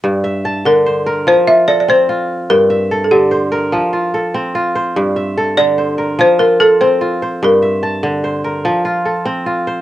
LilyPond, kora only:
<<
  \new Staff \with { instrumentName = "Kora" } { \time 12/8 \key g \dorian \tempo 4. = 98 r8 e''8 a''4 c''8 bes'4 f'8 a'4 f'4~ | f'8 e''8 a'4 c''8 bes'4 f'8 a'4 f'8 c''8~ | c''8 e''8 a'4 c''8 bes'4 f'8 a'4 f'8 c''8~ | c''8 e''8 a''4 c''8 bes'4 f'8 a'4 f'8 c''8 | }
  \new Staff \with { instrumentName = "Kora" } { \clef bass \time 12/8 \key g \dorian g,4 r8 d4 r8 f4 r8 c'4 r8 | g,4 r8 d4 r8 f4 r8 c'4 r8 | g,4 r8 d4 r8 f4 r8 c'4 r8 | g,4 r8 d4 r8 f4 r8 c'4 r8 | }
>>